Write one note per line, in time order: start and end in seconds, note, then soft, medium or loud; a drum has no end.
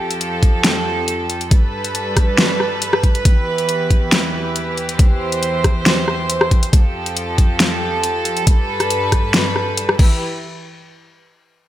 0.00 1.50 F2 medium
0.00 1.50 F3 medium
0.00 1.47 G4 medium
0.00 1.50 A4 medium
0.11 closed hi-hat soft
0.21 closed hi-hat medium
0.43 kick medium
0.43 closed hi-hat medium
0.64 snare loud
0.64 closed hi-hat medium
1.08 closed hi-hat medium
1.30 closed hi-hat soft
1.41 closed hi-hat medium
1.51 3.24 G2 medium
1.51 3.24 G3 medium
1.51 3.24 A4 medium
1.51 4.96 B4 medium
1.51 kick loud
1.51 closed hi-hat medium
1.84 closed hi-hat soft
1.95 closed hi-hat medium
2.17 kick medium
2.17 cross-stick medium
2.17 closed hi-hat soft
2.38 snare loud
2.38 closed hi-hat medium
2.60 cross-stick medium
2.82 closed hi-hat medium
2.93 cross-stick medium
3.04 kick medium
3.04 closed hi-hat soft
3.15 closed hi-hat soft
3.25 4.97 E2 medium
3.25 6.70 E3 medium
3.25 6.70 G4 medium
3.25 kick loud
3.25 closed hi-hat medium
3.58 closed hi-hat soft
3.69 closed hi-hat medium
3.90 kick medium
3.90 closed hi-hat soft
4.12 snare loud
4.12 closed hi-hat medium
4.56 closed hi-hat medium
4.77 closed hi-hat soft
4.89 closed hi-hat soft
4.99 6.71 E2 medium
4.99 6.71 C5 medium
4.99 kick loud
4.99 closed hi-hat medium
5.32 closed hi-hat medium
5.43 closed hi-hat medium
5.64 kick medium
5.64 cross-stick medium
5.64 closed hi-hat medium
5.86 snare loud
5.86 closed hi-hat medium
6.08 cross-stick medium
6.30 closed hi-hat medium
6.41 cross-stick medium
6.51 kick medium
6.51 closed hi-hat medium
6.63 closed hi-hat medium
6.73 8.45 F2 medium
6.73 8.45 F3 medium
6.73 8.45 G4 medium
6.73 9.96 A4 medium
6.73 kick loud
6.73 closed hi-hat medium
7.06 closed hi-hat medium
7.17 closed hi-hat medium
7.38 kick medium
7.38 closed hi-hat medium
7.60 snare loud
7.60 closed hi-hat medium
8.03 closed hi-hat medium
8.25 closed hi-hat medium
8.37 closed hi-hat medium
8.47 9.98 G2 medium
8.47 9.98 G3 medium
8.47 9.98 B4 medium
8.47 kick loud
8.47 closed hi-hat medium
8.80 cross-stick medium
8.80 closed hi-hat medium
8.90 closed hi-hat medium
9.12 kick medium
9.12 cross-stick medium
9.12 closed hi-hat medium
9.34 snare loud
9.34 closed hi-hat medium
9.56 cross-stick medium
9.77 closed hi-hat medium
9.89 cross-stick medium
9.99 10.19 E3 medium
9.99 10.19 E4 medium
9.99 10.19 G4 medium
9.99 10.19 B4 medium
9.99 kick loud
9.99 crash medium